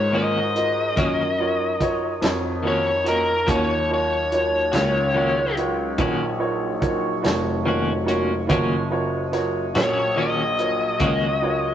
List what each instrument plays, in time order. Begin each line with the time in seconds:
Already playing: grand piano G#2, tonewheel organ D#4 A#4 C#5, lead electric guitar C#5
0.12 clean electric guitar D#3 A#3 C#4 F#4, upright piano F4 F#4 A#4 C#5
0.18 lead electric guitar D#5
0.55 upright piano F4 F#4 A#4 D#5, closed hi-hat
0.96 grand piano F#2, clean electric guitar D#3 A#3 C#4 F#4, upright piano F4 F#4 A#4 C#5, kick, closed hi-hat
1.38 upright piano F4 F#4 A#4 C#5
1.80 upright piano F4 F#4 A#4 C#5, kick, closed hi-hat
2.22 grand piano F2, upright piano F4 F#4 A#4 C#5, snare, closed hi-hat
2.63 clean electric guitar D#3 A#3 C#4 F#4, upright piano F4 F#4 A#4 C#5
2.68 lead electric guitar C#5
3.04 clean electric guitar A#3 C#4 F#4, upright piano F4 F#4 A#4 D#5, closed hi-hat
3.08 lead electric guitar A#4
3.47 grand piano D#2, clean electric guitar D#3 A#3 C#4 F#4, tonewheel organ F#3 D#4 C#5, upright piano F4 F#4 A#4 C#5, lead electric guitar C#5, kick, closed hi-hat
3.88 upright piano F4 F#4 A#4 C#5
3.94 lead electric guitar C#5
4.32 upright piano F4 F#4 A#4 C#5, closed hi-hat
4.72 grand piano C#2, clean electric guitar A#3 C#4 F#4, upright piano F4 F#4 A#4 C#5, snare, closed hi-hat
5.14 clean electric guitar D#3 A#3 C#4 F#4, upright piano F4 F#4 A#4 C#5
5.56 upright piano F4 F#4 A#4 C#5, closed hi-hat
5.98 grand piano A#1, clean electric guitar D#3 A#3 C#4 F#4, upright piano F4 F#4 A#4 C#5, kick, closed hi-hat
6.38 upright piano F4 F#4 A#4 C#5
6.80 upright piano F4 F#4 A#4 C#5, kick, closed hi-hat
7.22 grand piano F1, upright piano F4 F#4 A#4 C#5, closed hi-hat
7.26 snare
7.63 clean electric guitar D#3 A#3, upright piano F4 F#4 A#4 C#5
7.67 clean electric guitar C#4 F#4
8.04 upright piano F4 F#4 A#4 C#5
8.08 clean electric guitar A#3 C#4 F#4, closed hi-hat
8.47 grand piano F#1, clean electric guitar D#3 A#3 C#4, tonewheel organ F#3 C#5 D#5, upright piano F4 F#4 A#4 C#5, kick, closed hi-hat
8.51 clean electric guitar F#4
8.90 upright piano F4 F#4 A#4 C#5
9.32 upright piano F4 F#4 A#4 C#5, snare, closed hi-hat
9.74 grand piano A#1, clean electric guitar C#4 F#4, upright piano F4 F#4 A#4 C#5, lead electric guitar C#5, snare, closed hi-hat
9.78 clean electric guitar A#3
10.16 clean electric guitar D#3 A#3 C#4 F#4, upright piano F4 F#4 A#4 C#5, lead electric guitar D#5
10.58 upright piano F4 F#4 A#4 C#5, closed hi-hat
10.99 grand piano C#2, clean electric guitar D#3 A#3 C#4 F#4, upright piano F4 F#4 A#4 C#5, kick, closed hi-hat
11.42 upright piano F4 F#4 A#4 C#5